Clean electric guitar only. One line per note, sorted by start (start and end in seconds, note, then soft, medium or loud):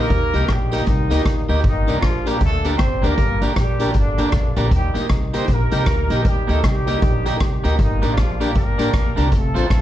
0.35 0.46 A#3 medium
0.35 0.47 D#4 medium
0.35 0.47 G4 medium
0.35 0.47 A#4 medium
0.73 0.84 A#3 medium
0.73 0.84 D#4 medium
0.73 0.85 G4 medium
0.73 0.85 A#4 medium
1.11 1.23 A#3 medium
1.11 1.23 D#4 medium
1.11 1.23 G4 medium
1.11 1.23 A#4 loud
1.49 1.61 A#3 medium
1.49 1.61 D#4 medium
1.49 1.61 G4 medium
1.49 1.61 A#4 medium
1.89 2.00 A#3 medium
1.89 2.00 D4 medium
1.89 2.00 G4 medium
1.89 2.01 A#4 loud
2.27 2.38 A#3 medium
2.27 2.38 D4 medium
2.27 2.38 G4 medium
2.27 2.39 A#4 medium
2.65 2.76 A#3 medium
2.65 2.77 D4 medium
2.65 2.77 G4 medium
2.65 2.77 A#4 loud
3.02 3.14 A#3 medium
3.02 3.15 D4 loud
3.02 3.15 G4 medium
3.02 3.15 A#4 loud
3.42 3.53 A#3 medium
3.42 3.53 D4 medium
3.42 3.54 G4 medium
3.42 3.54 A#4 medium
3.81 3.92 A#3 medium
3.81 3.92 D4 medium
3.81 3.92 G4 medium
3.81 3.92 A#4 medium
4.18 4.30 A#3 medium
4.18 4.30 D4 medium
4.18 4.31 G4 medium
4.18 4.31 A#4 medium
4.57 4.69 A#3 medium
4.57 4.68 D4 medium
4.57 4.69 G4 medium
4.57 4.69 A#4 medium
4.94 5.06 A#3 medium
4.94 5.06 D#4 medium
4.94 5.07 G4 medium
4.94 5.07 A#4 medium
5.34 5.45 A#3 medium
5.34 5.46 D#4 medium
5.34 5.46 G4 medium
5.34 5.46 A#4 medium
5.72 5.84 A#3 medium
5.72 5.84 D#4 medium
5.72 5.84 G4 medium
5.72 5.84 A#4 medium
6.10 6.22 A#3 medium
6.10 6.23 D#4 medium
6.10 6.23 G4 medium
6.10 6.23 A#4 loud
6.47 6.60 A#3 medium
6.47 6.60 D#4 medium
6.47 6.60 G4 medium
6.47 6.60 A#4 medium
6.87 6.99 A#3 medium
6.87 6.99 D#4 medium
6.87 7.00 G4 medium
6.87 6.99 A#4 medium
7.26 7.37 A#3 medium
7.26 7.38 D#4 medium
7.26 7.37 G4 medium
7.26 7.38 A#4 medium
7.64 7.75 A#3 medium
7.64 7.76 D#4 medium
7.64 7.76 G4 loud
7.64 7.76 A#4 loud
8.02 8.14 A#3 medium
8.02 8.14 D4 medium
8.02 8.14 G4 medium
8.02 8.14 A#4 medium
8.40 8.52 A#3 medium
8.40 8.52 D4 medium
8.40 8.53 G4 medium
8.40 8.52 A#4 loud
8.78 8.90 A#3 medium
8.78 8.90 D4 medium
8.78 8.91 G4 medium
8.78 8.91 A#4 loud
9.16 9.28 A#3 medium
9.16 9.28 D4 medium
9.16 9.29 G4 medium
9.16 9.29 A#4 loud
9.54 9.67 C4 medium
9.54 9.67 F4 medium
9.54 9.67 A4 medium
9.54 9.67 C5 loud